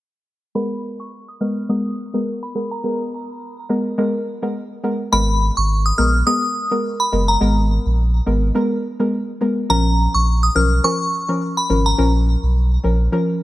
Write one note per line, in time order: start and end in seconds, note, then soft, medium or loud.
0.55 1.08 G#3 medium
0.55 1.08 B3 medium
0.55 1.09 A#4 loud
0.55 0.80 B5 medium
1.00 1.11 C#6 medium
1.28 1.39 D#6 medium
1.41 1.62 G#3 medium
1.41 1.62 B3 medium
1.41 1.62 A#4 medium
1.41 1.55 F6 medium
1.69 1.90 G#3 medium
1.69 1.90 B3 medium
1.69 1.91 A#4 loud
1.69 2.11 D#6 medium
2.14 2.33 G#3 medium
2.14 2.33 B3 medium
2.14 2.33 A#4 medium
2.43 2.54 B5 medium
2.55 2.76 G#3 medium
2.55 2.76 B3 medium
2.55 2.76 A#4 medium
2.71 2.82 A#5 medium
2.84 3.37 G#3 medium
2.84 3.37 B3 medium
2.84 3.37 A#4 loud
3.69 3.90 G#3 medium
3.69 3.91 B3 medium
3.69 3.91 A#4 medium
3.98 4.19 G#3 medium
3.98 4.19 B3 medium
3.98 4.19 A#4 loud
4.42 4.61 G#3 medium
4.42 4.62 B3 medium
4.42 4.62 A#4 medium
4.83 5.05 G#3 medium
4.83 5.05 B3 medium
4.83 5.05 A#4 medium
5.12 5.50 G#1 loud
5.12 5.65 G#3 medium
5.12 5.66 B3 medium
5.12 5.66 A#4 loud
5.12 5.38 B5 loud
5.57 5.92 G#1 medium
5.57 5.68 C#6 medium
5.86 5.97 D#6 medium
5.98 6.22 A#1 medium
5.98 6.19 G#3 medium
5.98 6.19 B3 medium
5.98 6.19 A#4 medium
5.98 6.12 F6 medium
6.26 6.48 G#3 medium
6.26 6.48 B3 medium
6.26 6.48 A#4 loud
6.26 6.69 D#6 medium
6.71 6.90 G#3 medium
6.71 6.90 B3 medium
6.71 6.90 A#4 medium
7.00 7.11 B5 medium
7.12 7.37 F#1 medium
7.12 7.33 G#3 medium
7.12 7.33 B3 medium
7.12 7.34 A#4 medium
7.28 7.39 A#5 medium
7.41 7.79 G#1 loud
7.41 7.94 G#3 medium
7.41 7.94 B3 medium
7.41 7.94 A#4 loud
7.86 8.20 A#1 medium
8.26 8.51 G#1 medium
8.26 8.47 G#3 medium
8.26 8.48 B3 medium
8.26 8.48 A#4 medium
8.55 8.76 G#3 medium
8.55 8.76 B3 medium
8.55 8.76 A#4 loud
9.00 9.19 G#3 medium
9.00 9.19 B3 medium
9.00 9.19 A#4 medium
9.41 9.62 G#3 medium
9.41 9.62 B3 medium
9.41 9.62 A#4 medium
9.70 10.07 A#1 loud
9.70 10.23 F3 loud
9.70 10.23 C#4 medium
9.70 10.23 A#4 loud
9.70 9.95 A#5 loud
10.14 10.49 A#1 medium
10.14 10.25 C#6 medium
10.43 10.54 D#6 medium
10.55 10.80 B1 loud
10.55 10.76 F3 medium
10.55 10.76 C#4 medium
10.55 10.77 A#4 medium
10.55 10.70 F6 medium
10.84 11.05 F3 medium
10.84 11.05 C#4 medium
10.84 11.05 A#4 loud
10.84 11.26 C#6 loud
11.28 11.47 F3 medium
11.28 11.47 C#4 medium
11.28 11.48 A#4 medium
11.57 11.68 B5 medium
11.69 11.94 G#1 medium
11.69 11.90 F3 medium
11.69 11.91 C#4 medium
11.69 11.91 A#4 medium
11.86 11.97 A#5 medium
11.98 12.36 A#1 loud
11.98 12.51 F3 loud
11.98 12.51 C#4 medium
11.98 12.51 A#4 loud
12.43 12.78 B1 medium
12.84 13.08 A#1 medium
12.84 13.05 F3 medium
12.84 13.05 C#4 medium
12.84 13.05 A#4 medium
13.12 13.33 F3 medium
13.12 13.33 C#4 medium
13.12 13.34 A#4 loud